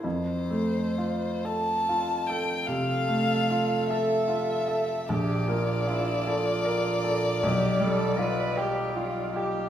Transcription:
X:1
M:12/8
L:1/8
Q:3/8=50
K:F
V:1 name="Violin"
c3 a2 g f3 e3 | d8- d3 z |]
V:2 name="Cello"
z6 A6 | G F E F3 G A =B G F G |]
V:3 name="Grand piano"
F,, A, F A F A C, A, F A F A | B,,, B, F A B A =B,,, G, F G F G |]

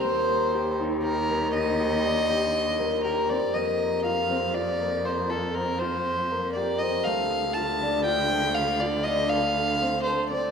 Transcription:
X:1
M:7/4
L:1/8
Q:1/4=120
K:Fmix
V:1 name="Violin"
c3 z B2 e6 B d | e2 f2 d2 c A B c3 d e | f2 a2 g2 f d e f3 c d |]
V:2 name="Harp"
B,2 G E G B,2 G D G2 B, G C | B,2 F C F B,2 F C F2 B, G C | A,2 F D F A,2 F D A2 C A C |]
V:3 name="Cello" clef=bass
E,,12- E,,2 | F,,12- F,,2 | D,,12- D,,2 |]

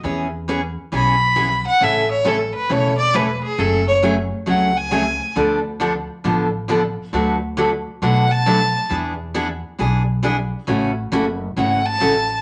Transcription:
X:1
M:4/4
L:1/8
Q:"Swing" 1/4=135
K:A
V:1 name="Fiddle"
z4 b3 f | e c A B c d B G | A c z2 f g3 | z8 |
z4 f a3 | z8 | z4 f a3 |]
V:2 name="Steel-string acoustic guitar"
[E,B,CG] z [E,B,CG] z [E,B,CG] z [E,B,CG] z | [C,E,A,CA] z [C,E,A,CA] z [C,E,A,CA] z [C,E,A,CA] z | [C,F,A,CG] z [C,F,A,CG] z [C,F,A,CG] z [C,F,A,CG] z | [D,=F,B,DA] z [D,F,B,DA] z [D,F,B,DA] z [D,F,B,DA] z |
[D,F,A,DFB] z [D,F,A,DFB] z [D,F,A,DFB] z [D,F,A,DFB] z | [E,B,DG] z [E,B,DG] z [E,B,DG] z [E,B,DG] z | [C,E,A,CF] z [C,E,A,CF] z [C,E,A,CF] z [C,E,A,CF] z |]
V:3 name="Upright bass" clef=bass
E,,4 B,,,4 | A,,,4 E,,,4 | F,,,4 C,,4 | D,,4 A,,,4 |
D,,4 B,,4 | E,,4 B,,,4 | A,,,2 F,,,2 G,,,2 A,,,2 |]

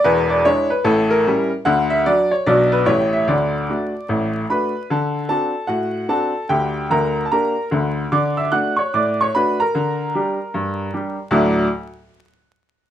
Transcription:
X:1
M:4/4
L:1/16
Q:"Swing" 1/4=149
K:D
V:1 name="Upright piano"
B2 d2 c2 B2 A2 _B4 z2 | f2 e2 d2 c2 d2 B2 c2 e2 | d12 [Bb]4 | [Aa]4 [Aa]4 [Ff]4 [Aa]4 |
[Gg]4 [_B_b]3 a [Bb]4 z4 | [dd']2 [ee']2 [ff']2 [cc']2 [dd']2 [cc']2 [Bb]2 [_B_b]2- | [_B_b]12- [Bb]2 z2 | [D,,A,,F,A,DFd']2 z12 z2 |]
V:2 name="Upright piano"
[E,,,E,,]4 [^G,DE]4 [A,,,A,,]4 [=G,CE]4 | [D,,D,]4 [F,DF]4 [B,,,B,,F,DF]4 [A,,,A,,A,EG]4 | [D,,D,]4 [A,DF]4 [A,,,A,,]4 [A,DF]4 | D,4 [=CDF]4 A,,4 [CDF]4 |
[D,,D,]4 [D,,D,]4 [_B,DG]4 [D,,D,]4 | D,4 [A,DF]4 A,,4 [A,DF]4 | D,4 [G,DG]4 G,,4 [G,DG]4 | z16 |]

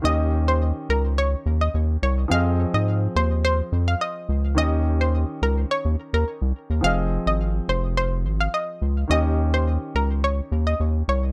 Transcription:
X:1
M:4/4
L:1/16
Q:1/4=106
K:Fm
V:1 name="Synth pluck"
e z2 c z2 B z d z2 e z2 d z | f z2 e z2 c z c z2 f e3 z | e z2 c z2 B z d z2 B z4 | f z2 e z2 c z c z2 f e3 z |
e z2 c z2 B z d z2 e z2 d z |]
V:2 name="Grand piano"
[E,DGe]16 | [F,CAe]16 | [E,DGe]16 | [F,CAe]16 |
[E,DGe]16 |]
V:3 name="Analog synth bass" clef=bass
E,,4- E,, z D,,4 E,,2 E,,2 C,,2 | F,,3 A,,3 E,,4 F,,2 z2 D,,2 | E,,4- E,, z D,,2 z E,, z E,, z C,, z E,, | F,,,3 A,,,3 F,,,4 A,,,2 z2 D,,2 |
E,,4- E,, z D,,4 E,,2 E,,2 C,,2 |]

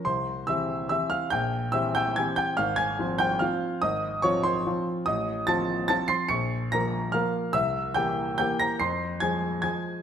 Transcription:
X:1
M:3/4
L:1/8
Q:1/4=144
K:Fm
V:1 name="Grand piano"
[cc']2 [=e=e']2 [ee'] [ff'] | [gg']2 [=e=e'] [gg'] [aa'] [gg'] | [ff'] [aa']2 [gg'] [ff']2 | [ee']2 [dd'] [cc']2 z |
[ee']2 [=a=a']2 [aa'] [c'c''] | [d'd'']2 [bb']2 [ff']2 | [=e=e']2 [gg']2 [gg'] [bb'] | [c'c'']2 [aa']2 [aa']2 |]
V:2 name="Grand piano"
C,,2 [=E,CG]2 [E,CG]2 | B,,,2 [=E,CG]2 [E,CG]2 | A,,,2 [F,CF]2 [F,CF]2 | A,,,2 [F,CF]2 [F,CF]2 |
=A,,,2 [F,CF]2 [F,CF]2 | B,,,2 [F,B,B]2 [F,B,B]2 | C,,2 [=E,B,G]2 [E,B,G]2 | F,,2 [F,A,A]2 [F,A,A]2 |]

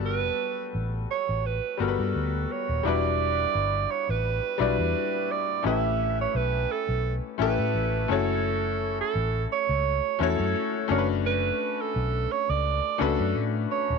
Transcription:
X:1
M:4/4
L:1/16
Q:"Swing 16ths" 1/4=86
K:Edor
V:1 name="Alto saxophone"
B4 z2 c2 B2 A4 c2 | d6 c B3 B4 d2 | e3 c B2 A2 z2 B4 A2- | A3 A3 c4 A4 c2 |
B3 A3 c d3 A2 z2 c2 |]
V:2 name="Grand piano"
[G,B,FA]4 z6 [G,B,F^AB]6 | [G,DEFB]6 z4 [G,DEFd]6 | [A,CEGB]6 z4 [A,CEGA]4 [A,CEFc]2- | [A,CEFc]4 z6 [A,CEFc]4 [A,CDF^AB]2- |
[A,CDF^AB]4 z6 [=A,CDFB]6 |]
V:3 name="Fingered electric bass" clef=bass
G,,,2 z2 A,,,2 z A,,,2 z G,,, G,, D,,2 z ^D,,, | E,,,4 G,,,2 z A,,,2 z B,,, E,, z4 | A,,,4 B,,,2 z B,,,2 z A,,, A,, A,,,2 F,,,2- | F,,,4 A,,,2 z C,,2 z E,, F,, z2 F,,,2- |
F,,,2 z2 B,,,2 z C,,2 z C,, F,, A,,2 z ^D,,, |]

